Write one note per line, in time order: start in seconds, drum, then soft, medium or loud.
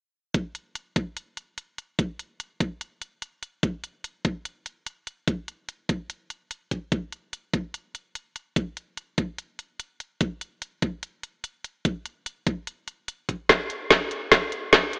0.34 kick loud
0.34 closed hi-hat medium
0.55 closed hi-hat medium
0.75 closed hi-hat medium
0.96 kick medium
0.96 closed hi-hat medium
1.17 closed hi-hat medium
1.37 closed hi-hat medium
1.58 closed hi-hat medium
1.78 closed hi-hat medium
1.99 kick loud
1.99 closed hi-hat medium
2.19 closed hi-hat medium
2.40 closed hi-hat medium
2.60 kick medium
2.60 closed hi-hat medium
2.81 closed hi-hat medium
3.02 closed hi-hat medium
3.22 closed hi-hat medium
3.43 closed hi-hat medium
3.63 kick loud
3.63 closed hi-hat medium
3.84 closed hi-hat medium
4.04 closed hi-hat medium
4.25 kick loud
4.25 closed hi-hat medium
4.45 closed hi-hat medium
4.66 closed hi-hat medium
4.87 closed hi-hat medium
5.07 closed hi-hat medium
5.28 kick loud
5.28 closed hi-hat medium
5.48 closed hi-hat medium
5.69 closed hi-hat medium
5.89 kick medium
5.89 closed hi-hat medium
6.10 closed hi-hat medium
6.30 closed hi-hat medium
6.51 closed hi-hat medium
6.71 kick medium
6.71 closed hi-hat medium
6.92 kick loud
6.92 closed hi-hat medium
7.12 closed hi-hat medium
7.33 closed hi-hat medium
7.54 kick medium
7.54 closed hi-hat medium
7.74 closed hi-hat medium
7.95 closed hi-hat medium
8.15 closed hi-hat medium
8.36 closed hi-hat medium
8.56 kick loud
8.56 closed hi-hat medium
8.77 closed hi-hat medium
8.97 closed hi-hat medium
9.18 kick medium
9.18 closed hi-hat medium
9.38 closed hi-hat medium
9.59 closed hi-hat medium
9.80 closed hi-hat medium
10.00 closed hi-hat medium
10.21 kick loud
10.21 closed hi-hat medium
10.41 closed hi-hat medium
10.62 closed hi-hat medium
10.82 kick medium
10.82 closed hi-hat medium
11.03 closed hi-hat medium
11.23 closed hi-hat medium
11.44 closed hi-hat medium
11.64 closed hi-hat medium
11.85 kick loud
11.85 closed hi-hat medium
12.06 closed hi-hat medium
12.26 closed hi-hat medium
12.47 kick loud
12.47 closed hi-hat medium
12.67 closed hi-hat medium
12.88 closed hi-hat medium
13.08 closed hi-hat medium
13.29 kick medium
13.29 closed hi-hat medium
13.49 kick medium
13.49 snare soft
13.49 closed hi-hat medium
13.70 closed hi-hat medium
13.90 kick loud
13.90 snare soft
13.90 closed hi-hat medium
14.11 closed hi-hat medium
14.32 kick medium
14.32 snare soft
14.32 closed hi-hat medium
14.52 closed hi-hat medium
14.73 kick medium
14.73 snare medium
14.73 closed hi-hat medium
14.93 closed hi-hat medium